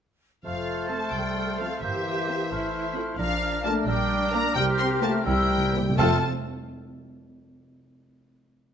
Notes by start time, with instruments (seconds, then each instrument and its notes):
0.45 double bass section F1, french horn section F3, bassoon A3, cello section A4, oboe C5, violin section F5, flute section F6
0.90 french horn section A3, viola section C4 A4, violin section A4 C5 A5
1.13 double bass section C2, french horn section G3, violin section G5
1.60 french horn section F3, viola section C4 A4, violin section A4 C5 F5
1.82 double bass section G1, french horn section E3, bassoon A#3, cello section G4, oboe C5, violin section E5, flute section G6
2.28 viola section C4 G4, violin section A#4 C5
2.51 double bass section A1, bassoon A3, cello section E4, oboe C5, flute section F6
2.96 viola section C4 F4, violin section A4 C5
3.18 double bass section A#1, french horn section F3, bassoon D4, cello section D4, oboe A#4, violin section F5, flute section F6
3.65 french horn section A3, viola section A#3 D4, violin section F4 D5 A5
3.87 double bass section A#1, french horn section G3, bassoon D4, cello section D4, oboe A#4, violin section G5, flute section D6
4.33 viola section A#3 D4, french horn section A#3, violin section A#4 D5 A#5
4.56 double bass section C2, timpani C3, french horn section G3, bassoon C4, cello section G4, oboe A#4, violin section G5, flute section F6
4.79 french horn section C4, violin section C6
5.02 french horn section A3, viola section A#3 F4, violin section G4 C5 A5
5.26 double bass section C2, timpani C3, french horn section G3, bassoon C4, cello section E4, oboe A#4, violin section G5, flute section E6
5.34 timpani C3
5.41 timpani C3
5.49 timpani C3
5.58 timpani C3
5.65 timpani C3
5.73 timpani C3, viola section A#3 E4, violin section G4 C5
5.81 timpani C3
5.89 timpani C3
5.97 double bass section F1, cello section F2, timpani F2, french horn section A3, viola section A3 F4, bassoon C4, violin section A4 C5 A5, oboe A4, flute section F6